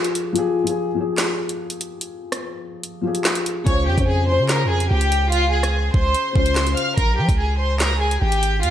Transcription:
Already playing: F3 F4 G4 G#4
0.04 closed hi-hat
0.15 closed hi-hat
0.33 F3 F4 G4, closed hi-hat
0.39 G#4
0.64 F3 F4 G4, closed hi-hat
0.69 G#4
0.94 F3 F4 G4
1.00 G#4
1.18 snare, clap, closed hi-hat
1.49 closed hi-hat
1.70 closed hi-hat
1.81 closed hi-hat
2.01 closed hi-hat
2.32 cross-stick, closed hi-hat
2.83 closed hi-hat
3.01 F3 F4 G4
3.07 G#4
3.15 closed hi-hat
3.25 snare, clap, closed hi-hat
3.35 closed hi-hat
3.46 closed hi-hat
3.64 C#2 C#3 C#4 F4 C#5 C#6, kick, closed hi-hat
3.70 C5
3.87 F2 G4 G5
3.95 F2 C#3 C#4 F4, kick, closed hi-hat
4.01 C5
4.08 G#4 G#5
4.26 C#3 C#4 F4 C5 C6
4.32 C5
4.39 C#3
4.49 A#4 A#5, snare, clap, closed hi-hat
4.65 F2
4.70 G#4 G#5
4.80 closed hi-hat
4.91 C#2 G4 G5
5.01 closed hi-hat
5.12 closed hi-hat
5.31 F4 F5, closed hi-hat
5.53 G#4 G#5
5.63 cross-stick, closed hi-hat
5.94 C#2 C5 C6, kick
6.15 closed hi-hat
6.33 C#2 C#3 C#4 F4 C5 C6, kick
6.39 C5
6.46 closed hi-hat
6.56 snare, clap, closed hi-hat
6.67 closed hi-hat
6.76 F5 F6, closed hi-hat
6.98 A#1 A#4 A#5, kick, closed hi-hat
7.18 F3 G4 G5
7.29 C#2, kick, closed hi-hat
7.39 G#4 G#5
7.59 C5 C6
7.80 A#4 A#5, snare, clap, closed hi-hat
8.01 G#4 G#5
8.11 closed hi-hat
8.22 G#1 G4 G5
8.32 closed hi-hat
8.43 closed hi-hat
8.63 F2 F4 F5, closed hi-hat

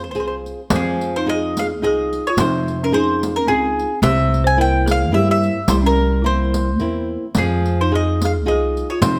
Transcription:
Already playing: F2
0.04 C5
0.11 C4 F4 C5, riq
0.15 C2 G#4
0.20 C5
0.28 C5
0.46 riq
0.70 F2 F3, riq
0.74 C4 G#4
1.01 riq
1.16 D#4 C5
1.26 D#4 F4 G#4 D#5
1.57 G#4 F5, riq
1.82 C2 D#4 F4 G#4 D#5
1.87 G#4
2.13 riq
2.27 F4 C#5
2.37 F2 C3 D#4 C5, riq
2.68 riq
2.83 C#4 A#4
2.92 D#4 F4 G#4 C5
3.23 riq
3.36 C#4 A#4
3.47 C#2 C4 D#4 F4 G#4
3.79 riq
4.02 C2 C3 G4 E5, riq
4.34 riq
4.44 C5 G#5
4.57 A#3 C4 E4 A#4
4.61 G5
4.86 G#4, riq
4.91 F5
5.12 G2 A#3 C4 E4 G4 E5
5.29 G4 E5
5.44 riq
5.68 C2 G3 E4 C5, riq
5.82 C#4
5.86 A#4
6.22 A#3 C4 E4 C5
6.54 riq
6.79 E2 A#3 C4 E4, riq
7.35 F2 F3 C4 G#4, riq
7.66 riq
7.81 D#4 C5
7.91 D#4 F4 G#4 D#5
8.22 G#4 F5, riq
8.45 C2 D#4 F4 G#4 D#5
8.52 G#4
8.77 riq
8.90 F4 C#5
9.02 F2 C3 D#4 C5, riq

